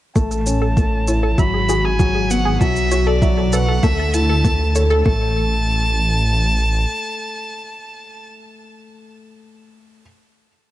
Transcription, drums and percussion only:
0.16 kick, shaker
0.31 shaker
0.46 shaker
0.77 kick, shaker
1.08 shaker
1.38 kick, shaker
1.69 shaker
1.99 kick, shaker
2.31 shaker
2.61 kick, shaker
2.76 shaker
2.92 shaker
3.22 kick, shaker
3.53 shaker
3.83 kick, shaker
4.14 shaker
4.44 kick, shaker
4.75 shaker
5.06 kick

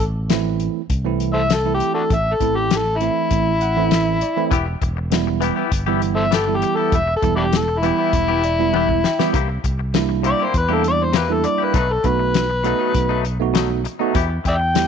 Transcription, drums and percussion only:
0.00 kick, closed hi-hat
0.30 snare, closed hi-hat
0.60 closed hi-hat
0.90 kick, closed hi-hat
1.20 closed hi-hat
1.50 snare, closed hi-hat
1.80 closed hi-hat
2.10 kick, closed hi-hat
2.40 kick, closed hi-hat
2.71 snare, closed hi-hat
3.01 closed hi-hat
3.31 kick, closed hi-hat
3.61 closed hi-hat
3.91 snare, closed hi-hat
4.21 closed hi-hat
4.51 kick, closed hi-hat
4.82 kick, closed hi-hat
5.12 snare, closed hi-hat
5.42 closed hi-hat
5.72 kick, closed hi-hat
6.02 closed hi-hat
6.32 snare, closed hi-hat
6.62 closed hi-hat
6.92 kick, closed hi-hat
7.22 kick, closed hi-hat
7.53 snare, closed hi-hat
7.83 closed hi-hat
8.13 kick, closed hi-hat
8.44 closed hi-hat
8.74 high tom
8.89 kick
9.04 snare
9.20 snare
9.34 kick, closed hi-hat
9.64 kick, closed hi-hat
9.94 snare, closed hi-hat
10.24 closed hi-hat
10.54 kick, closed hi-hat
10.84 closed hi-hat
11.13 snare, closed hi-hat
11.44 closed hi-hat
11.74 kick, closed hi-hat
12.04 kick, closed hi-hat
12.34 snare, closed hi-hat
12.64 closed hi-hat
12.95 kick, closed hi-hat
13.25 closed hi-hat
13.55 snare, closed hi-hat
13.85 closed hi-hat
14.15 kick, closed hi-hat
14.45 kick, closed hi-hat
14.75 snare, closed hi-hat

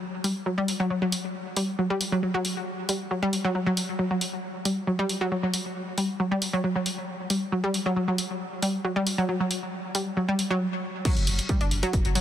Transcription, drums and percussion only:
0.24 open hi-hat
0.68 open hi-hat
1.12 open hi-hat
1.57 open hi-hat
2.01 open hi-hat
2.45 open hi-hat
2.89 open hi-hat
3.33 open hi-hat
3.77 open hi-hat
4.21 open hi-hat
4.65 open hi-hat
5.09 open hi-hat
5.54 open hi-hat
5.98 open hi-hat
6.42 open hi-hat
6.86 open hi-hat
7.30 open hi-hat
7.74 open hi-hat
8.18 open hi-hat
8.62 open hi-hat
9.07 open hi-hat
9.51 open hi-hat
9.95 open hi-hat
10.39 open hi-hat
11.05 kick, closed hi-hat, crash
11.17 closed hi-hat
11.27 open hi-hat
11.39 closed hi-hat
11.49 kick, closed hi-hat
11.61 closed hi-hat
11.71 open hi-hat
11.83 closed hi-hat
11.93 kick, closed hi-hat
12.05 closed hi-hat
12.15 open hi-hat

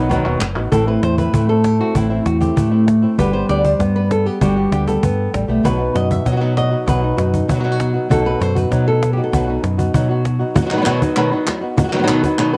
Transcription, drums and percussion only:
0.11 cajon bass, cajon slap
0.41 cajon slap, clap
0.56 cajon slap, clap
0.72 cajon bass
1.03 cajon slap
1.18 cajon bass
1.34 cajon bass
1.64 cajon slap
1.80 cajon slap
1.95 cajon bass
2.26 cajon slap
2.42 cajon bass
2.57 cajon bass
2.88 cajon slap
3.19 cajon bass
3.49 cajon slap
3.65 cajon bass
3.80 cajon bass, cajon slap
4.11 cajon slap
4.26 cajon slap
4.41 cajon bass
4.72 cajon slap
4.87 cajon bass
5.03 cajon bass
5.34 cajon bass, cajon slap
5.49 cajon slap
5.65 cajon bass
5.96 cajon slap
6.11 cajon bass
6.26 cajon bass, cajon slap
6.57 cajon slap
6.88 cajon bass
7.18 cajon slap
7.34 cajon bass
7.49 cajon bass
7.80 cajon slap
8.11 cajon bass
8.26 cajon slap
8.42 cajon slap
8.57 cajon bass
8.72 cajon bass, cajon slap
9.03 cajon slap
9.33 cajon bass
9.64 cajon slap
9.79 cajon bass
9.94 cajon bass
10.25 cajon slap
10.41 cajon slap
10.56 cajon bass
10.70 clap
10.86 cajon slap, clap
11.02 cajon bass
11.16 clap
11.47 cajon slap, clap
11.78 cajon bass
11.93 cajon slap, clap
12.08 cajon slap, clap
12.24 cajon bass
12.38 clap

